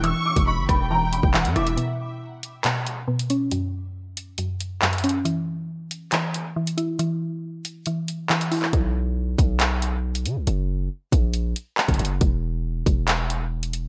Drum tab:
HH |x-----x-----x-------x-----x-x-x-|x-----------x---x---x-----x-x---|x-----------x---x---x-----xxxx--|x-----------x---x---x-----x-x---|
CP |------------------------x-------|----------------x---------------|------------------------x-------|----------------x---------------|
SD |------------r---------------r---|--------------------------------|--------------------------------|--------------------------------|
BD |------o-----o---------o---------|--------------------------------|--------------------------------|--------------------------------|

HH |x-----------x---x---x-----x-o---|x-----------x---x---x-----x-x---|x-----------x---x---x-----xxxx--|x-----------x---x---x-----x-x---|
CP |------------------------x-----x-|----------------x---------------|------------------------x-------|----------------x---------------|
SD |--------------------------------|--------------------------------|--------------------------------|--------------------------------|
BD |--------------------------------|o-----------o-------------------|------------o-------------o-----|o-----------o-------------------|